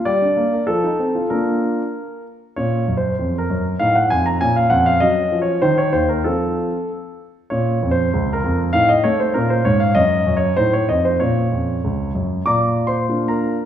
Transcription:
<<
  \new Staff \with { instrumentName = "Grand piano" } { \time 2/4 \key bes \major \tempo 4 = 96 << { d''4 a'4 | bes'4. r8 | \key bes \minor \tuplet 3/2 { des''4 c''8~ c''8 bes'4 } | f''16 ges''16 aes''16 bes''16 aes''16 f''16 ges''16 f''16 |
\tuplet 3/2 { ees''4 des''8 } c''16 des''16 c''16 bes'16 | a'4 r4 | \tuplet 3/2 { des''4 c''8~ c''8 bes'4 } | f''16 ees''16 des''16 c''16 bes'16 c''16 des''16 f''16 |
\tuplet 3/2 { ees''4 des''8 } c''16 des''16 ees''16 c''16 | des''4. r8 | \key bes \major \tuplet 3/2 { <d'' bes'' d'''>4 <c'' c'''>8~ <c'' c'''>8 <bes' bes''>4 } | } \\ { r2 | r2 | des'2 | ees'4 des'4 |
des'4 ees'4 | r2 | des'2 | ees'4 des'4 |
des'4 ees'4 | des'2 | r2 | } >> }
  \new Staff \with { instrumentName = "Grand piano" } { \clef bass \time 2/4 \key bes \major g16 d'16 bes16 bes'16 f16 ees'16 c'16 f'16 | <bes d' f'>4 r4 | \key bes \minor bes,8 ges,8 f,8 ges,8 | a,8 f,8 bes,8 f,8 |
ges8 f8 ees8 ees,8 | <f c' f'>4 r4 | bes,8 f,8 des,8 f,8 | a,8 a8 bes,8 aes,8 |
ges,8 ges,8 a,8 f,8 | bes,8 f,8 des,8 ges,8 | \key bes \major bes,4 <bes d' f'>4 | }
>>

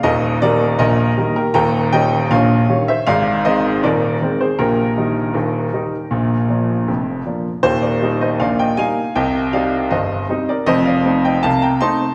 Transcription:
<<
  \new Staff \with { instrumentName = "Grand piano" } { \time 2/4 \key ees \major \tempo 4 = 79 <bes' ees''>8 <bes' d''>8 <bes' ees''>8. <g' bes'>16 | <g'' bes''>8 <ees'' g''>8 <des'' f''>8. <c'' fes''>16 | <d'' f''>8 <c'' ees''>8 <bes' d''>8. <aes' c''>16 | <g' bes'>2~ |
<g' bes'>4 r4 | <g' c''>16 <bes' d''>8 <c'' ees''>16 <d'' f''>16 <ees'' g''>16 <f'' aes''>8 | <ees'' g''>8 <d'' f''>8 <c'' ees''>8. <bes' d''>16 | <c'' ees''>16 <d'' f''>8 <ees'' g''>16 <f'' a''>16 <g'' bes''>16 <a'' c'''>8 | }
  \new Staff \with { instrumentName = "Grand piano" } { \clef bass \time 2/4 \key ees \major <ees,, ees,>8 <ees g bes>8 <bes,, bes,>8 <ees g bes>8 | <ees,, ees,>8 <ees g des'>8 <bes,, bes,>8 <ees g des'>8 | <aes,, aes,>8 <ees aes c'>8 <ees,, ees,>8 <ees aes c'>8 | <bes,, bes,>8 <ees g ees'>8 <ees,, ees,>8 <ees g ees'>8 |
<bes,, bes,>8 <f bes d'>8 <f,, f,>8 <f bes d'>8 | <ees,, ees,>8 <g bes ees'>8 <bes,, bes,>8 <g bes ees'>8 | <c, c>8 <g c' ees'>8 <g,, g,>8 <g c' ees'>8 | <f,, f,>8 <a c' ees'>8 <c, c>8 <a c' ees'>8 | }
>>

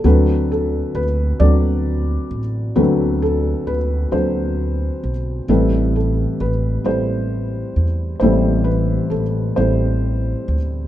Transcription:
<<
  \new Staff \with { instrumentName = "Felt piano" } { \time 6/8 \key d \mixolydian \tempo 4. = 44 << { b'8 a'8 b'8 d''4. | b'8 a'8 b'8 c''4 r8 | b'8 a'8 b'8 c''4. | c''8 b'8 a'8 c''4 r8 | } \\ { <fis c' d' a'>4 r8 <fis c' d' a'>4 r8 | <fis c' d' a'>4 r8 <fis c' d' a'>4 r8 | <g c' e' a'>4 r8 <g c' e' a'>4 r8 | <g c' e' a'>4 r8 <g c' e' a'>4 r8 | } >> }
  \new Staff \with { instrumentName = "Felt piano" } { \clef bass \time 6/8 \key d \mixolydian <d, d>2. | <d, d>2. | <a,, a,>2. | <a,, a,>2. | }
  \new Staff \with { instrumentName = "Upright bass" } { \clef bass \time 6/8 \key d \mixolydian d,4 d,8 d,4 a,,8 | d,4 d,8 d,4 b,,8 | a,,4 a,,8 a,,4 e,8 | a,,4 a,,8 a,,4 d,8 | }
>>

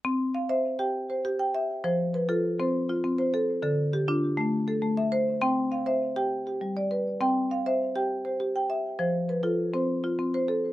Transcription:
\new Staff \with { instrumentName = "Marimba" } { \time 12/8 \key c \major \tempo 4. = 134 << { r4 f''8 e''4 g''4 c''4 g''4. | c''4 b'8 a'4 c''4 f'4 c''4. | a'4 g'8 f'4. r8 a'4 e''4. | g''4 f''8 e''4 g''4 g'4 d''4. |
g''4 f''8 e''4 g''4 c''4 g''4. | c''4 b'8 a'4 c''4 f'4 c''4. | } \\ { c'4 r8 c''4 g'4 r8 g'4 e''4 | f4 r8 f'4 c'4 r8 c'4 a'4 | d4 r8 d'4 a8 r4 a4 c''4 | c'4 r8 c''4 g'8 r4 g4 b'4 |
c'4 r8 c''4 g'4 r8 g'4 e''4 | f4 r8 f'4 c'4 r8 c'4 a'4 | } >> }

